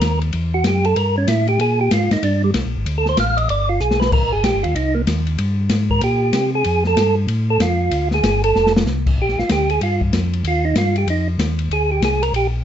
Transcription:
0.00 0.32 D#2 medium
0.00 0.19 A#4 medium
0.00 snare medium
0.00 hi-hat pedal medium
0.00 ride medium
0.21 ride soft
0.33 0.64 E2 medium
0.33 ride medium
0.54 0.65 F#4 medium
0.64 0.95 F#2 medium
0.64 0.85 G4 medium
0.64 snare medium
0.64 hi-hat pedal medium
0.64 ride medium
0.84 0.96 A4 medium
0.84 ride soft
0.96 1.27 G2 medium
0.96 1.16 A#4 medium
0.96 ride medium
1.18 1.28 C#4 medium
1.27 1.58 A2 medium
1.27 1.47 E4 medium
1.27 snare medium
1.27 hi-hat pedal medium
1.27 ride medium
1.47 1.59 G4 loud
1.47 ride soft
1.58 1.90 A#2 medium
1.58 1.79 G#4 loud
1.58 ride medium
1.81 1.91 G4 medium
1.91 2.09 G#2 medium
1.91 2.12 F4 medium
1.91 snare medium
1.91 hi-hat pedal medium
1.91 ride medium
2.11 2.17 G#2 soft
2.11 2.23 D#4 medium
2.11 snare medium
2.11 ride medium
2.22 2.53 G2 medium
2.22 2.42 D4 medium
2.22 ride medium
2.44 2.51 G3 medium
2.54 2.64 C2 medium
2.54 snare medium
2.54 hi-hat pedal medium
2.54 ride medium
2.65 2.75 A#1 medium
2.75 2.85 G#1 medium
2.86 3.16 D2 medium
2.86 ride medium
2.98 3.07 A4 medium
3.06 3.18 C5 medium
3.06 snare soft
3.17 3.48 A1 medium
3.17 3.38 F5 loud
3.17 snare medium
3.17 hi-hat pedal medium
3.17 ride medium
3.37 3.48 D#5 medium
3.37 ride medium
3.48 3.79 G1 medium
3.48 3.69 D5 medium
3.48 ride medium
3.69 3.80 F4 medium
3.80 4.11 B1 medium
3.80 4.00 G#4 medium
3.80 hi-hat pedal medium
3.91 snare medium
4.00 4.11 B4 medium
4.00 snare medium
4.12 4.22 C2 medium
4.12 4.32 A#4 medium
4.12 kick medium
4.12 crash medium
4.22 4.33 A#1 soft
4.32 4.43 G1 medium
4.32 4.44 G#4 medium
4.43 4.54 A#1 medium
4.43 4.63 G4 medium
4.43 snare medium
4.43 hi-hat pedal medium
4.43 ride medium
4.55 4.65 G1 medium
4.63 4.75 D#2 medium
4.63 4.75 F4 medium
4.63 ride soft
4.75 5.06 C2 medium
4.75 4.95 D#4 medium
4.75 ride medium
4.94 5.02 A#3 medium
5.07 5.38 D#2 medium
5.07 snare medium
5.07 hi-hat pedal medium
5.07 ride medium
5.27 ride soft
5.38 5.69 G2 medium
5.38 ride medium
5.69 6.01 G#2 medium
5.69 snare medium
5.69 hi-hat pedal medium
5.69 ride medium
5.90 6.02 A#4 medium
5.90 kick medium
6.01 6.32 A#2 medium
6.01 6.51 G4 medium
6.01 ride medium
6.33 6.64 C3 medium
6.33 snare medium
6.33 hi-hat pedal medium
6.33 ride medium
6.55 6.84 G#4 medium
6.64 6.96 F2 medium
6.64 ride medium
6.84 7.15 A4 medium
6.84 snare soft
6.96 7.27 G2 medium
6.96 snare medium
6.96 hi-hat pedal medium
6.96 ride medium
7.27 7.58 A2 medium
7.27 ride medium
7.50 7.61 A4 medium
7.59 7.90 F2 medium
7.59 8.09 F4 medium
7.59 snare medium
7.59 hi-hat pedal medium
7.59 ride medium
7.91 8.22 D2 medium
7.91 ride medium
8.11 8.42 G#4 medium
8.11 snare medium
8.22 8.53 G1 loud
8.22 snare medium
8.22 hi-hat pedal medium
8.22 ride medium
8.44 8.73 A4 loud
8.44 ride medium
8.55 8.85 F1 medium
8.55 snare medium
8.66 snare medium
8.76 snare loud
8.86 9.17 C2 medium
8.86 snare medium
8.86 hi-hat pedal medium
9.06 kick medium
9.06 crash medium
9.18 9.36 A#1 medium
9.18 9.39 G4 medium
9.29 snare soft
9.38 9.44 A#1 soft
9.38 9.50 F4 medium
9.38 snare soft
9.49 9.80 D2 medium
9.49 9.70 G4 medium
9.49 snare medium
9.49 hi-hat pedal medium
9.49 ride medium
9.69 9.81 G#4 medium
9.69 ride soft
9.81 10.12 G2 medium
9.81 10.01 F4 medium
9.81 ride medium
10.01 kick medium
10.13 10.43 F2 medium
10.13 snare medium
10.13 hi-hat pedal medium
10.13 ride medium
10.33 ride soft
10.44 10.74 D#2 medium
10.44 10.65 F4 medium
10.44 ride medium
10.65 10.76 D#4 medium
10.75 11.06 G2 medium
10.75 10.96 F4 medium
10.75 snare medium
10.75 hi-hat pedal medium
10.75 ride medium
10.96 11.08 G4 medium
10.96 ride medium
11.06 11.37 F2 medium
11.06 11.28 D#4 medium
11.06 ride medium
11.38 11.69 D#2 medium
11.38 snare medium
11.38 hi-hat pedal medium
11.38 ride medium
11.59 ride soft
11.70 12.01 D2 medium
11.70 11.91 G#4 medium
11.70 ride medium
11.92 12.02 G4 medium
12.01 12.32 C2 medium
12.01 12.22 G#4 medium
12.01 snare medium
12.01 hi-hat pedal medium
12.01 ride medium
12.23 12.34 A#4 medium
12.23 ride soft
12.33 12.64 A#1 medium
12.33 12.47 G4 medium
12.33 ride medium

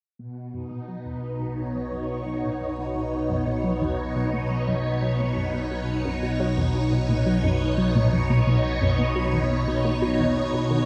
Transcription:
0.19 10.86 B1 medium
0.19 10.86 B2 medium
0.19 0.28 B2 medium
0.54 0.59 F#2 medium
0.54 10.86 D#4 medium
0.71 0.80 B2 medium
0.88 0.97 F#3 medium
0.88 10.86 B3 medium
1.06 1.14 E2 medium
1.40 1.45 B2 medium
1.48 10.86 C#5 medium
1.57 1.66 A#2 medium
1.75 1.87 F#3 medium
1.92 1.97 F#2 medium
2.26 2.35 F#3 medium
2.44 2.52 A#2 medium
2.61 2.69 F#2 medium
2.78 2.87 B2 medium
2.95 3.04 B2 medium
3.29 3.35 F#2 medium
3.47 3.56 B2 medium
3.64 3.73 F#3 medium
3.81 3.90 E2 medium
4.16 4.21 B2 medium
4.33 4.42 A#2 medium
4.50 4.63 F#3 medium
4.68 4.73 F#2 medium
5.02 5.11 F#3 medium
5.19 5.28 A#2 medium
5.37 5.45 F#2 medium
5.54 5.62 B2 medium
5.71 5.80 B2 medium
6.05 6.11 F#2 medium
6.23 6.31 B2 medium
6.40 6.49 F#3 medium
6.57 6.66 E2 medium
6.92 6.97 B2 medium
7.09 7.18 A#2 medium
7.26 7.39 F#3 medium
7.43 7.49 F#2 loud
7.78 7.87 F#3 medium
7.95 8.04 A#2 medium
8.13 8.21 F#2 medium
8.30 8.38 B2 medium
8.47 8.56 B2 medium
8.81 8.87 F#2 medium
8.99 9.07 B2 medium
9.16 9.24 F#3 medium
9.33 9.42 E2 medium
9.68 9.73 B2 medium
9.85 9.93 A#2 medium
10.02 10.15 F#3 medium
10.19 10.28 E2 medium
10.54 10.67 B2 medium
10.71 10.76 D#3 medium

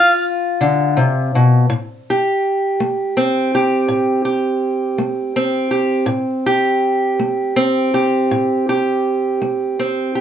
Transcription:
0.00 0.16 D3 medium
0.00 1.66 F4 medium
0.00 0.31 F5 medium
0.61 0.97 D3 medium
0.97 1.34 C3 medium
1.35 1.69 B2 medium
1.70 2.36 A2 medium
2.10 3.54 G4 medium
2.80 3.46 A3 medium
3.17 5.36 C4 medium
3.55 4.24 G4 medium
3.88 4.55 A2 medium
4.25 5.70 G4 medium
4.98 5.65 A3 medium
5.36 7.56 C4 medium
5.71 6.04 G4 medium
6.06 6.74 A2 medium
6.46 7.93 G4 medium
7.19 7.85 A3 medium
7.56 9.79 C4 medium
7.94 8.67 G4 medium
8.31 8.96 A2 medium
8.69 10.14 G4 medium
9.42 10.06 A3 medium
9.79 10.21 C4 soft
10.15 10.21 G4 soft

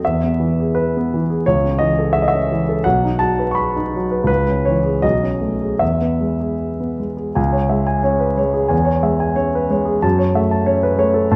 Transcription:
0.05 1.43 E2 soft
0.05 0.75 E5 medium
0.24 0.50 B3 soft
0.40 0.67 E3 soft
0.60 1.15 G#4 soft
0.75 1.45 B4 medium
0.97 1.23 B3 soft
1.14 1.40 E3 soft
1.30 1.46 G#4 soft
1.46 2.82 C#2 medium
1.46 1.80 C#5 medium
1.65 1.91 C#4 soft
1.79 2.08 E3 soft
1.79 2.14 D#5 medium
1.98 2.54 A4 soft
2.13 2.20 E5 medium
2.22 2.28 D#5 medium
2.28 2.85 E5 medium
2.34 2.61 C#4 soft
2.52 2.79 E3 soft
2.69 2.86 A4 soft
2.84 4.25 B1 medium
2.84 3.20 F#5 medium
3.04 3.32 D#4 soft
3.19 3.49 F#3 soft
3.19 3.48 A5 medium
3.39 3.96 B4 soft
3.51 4.28 B5 medium
3.51 3.57 C#6 medium
3.76 4.04 D#4 soft
3.96 4.23 F#3 soft
4.11 4.26 B4 soft
4.24 4.99 C#2 medium
4.24 4.65 B4 medium
4.48 4.78 C#4 soft
4.65 4.97 E3 soft
4.65 5.03 C#5 medium
4.84 5.03 G#4 soft
5.02 5.79 B1 soft
5.02 5.81 D#5 medium
5.23 5.54 C#4 soft
5.41 5.73 A3 soft
5.62 5.81 G#4 soft
5.79 7.34 E2 soft
5.79 7.00 E5 medium
6.01 6.33 B3 soft
6.21 6.53 G#3 soft
6.40 7.05 G#4 soft
6.80 7.13 B3 soft
6.99 7.31 G#3 soft
7.17 7.37 G#4 soft
7.35 8.67 C#2 medium
7.35 7.64 G#5 soft
7.52 7.81 C#5 soft
7.69 8.01 G#3 soft
7.69 7.98 E5 soft
7.86 8.15 G#5 medium
8.03 8.34 C#4 soft
8.03 8.31 C#5 medium
8.20 8.38 B4 soft
8.38 8.68 G#3 soft
8.38 8.65 C#5 medium
8.54 8.71 G#4 soft
8.68 9.99 E2 medium
8.68 8.97 G#5 medium
8.85 9.14 C#5 medium
9.03 9.35 G#3 soft
9.03 9.31 E5 medium
9.20 9.48 G#5 medium
9.36 9.67 C#4 soft
9.36 9.64 C#5 medium
9.55 9.72 B4 soft
9.70 10.00 G#3 soft
9.70 9.98 C#5 medium
9.85 10.03 G#4 medium
10.02 11.28 F#2 medium
10.02 10.29 A5 medium
10.19 10.45 C#5 medium
10.35 10.65 A3 medium
10.35 10.62 E5 medium
10.51 10.78 A5 medium
10.66 10.96 C#4 medium
10.66 10.93 C#5 medium
10.83 11.00 B4 medium
10.98 11.28 A3 medium
10.98 11.25 C#5 medium
11.14 11.31 A4 medium
11.31 11.36 A2 medium
11.31 11.36 A5 medium

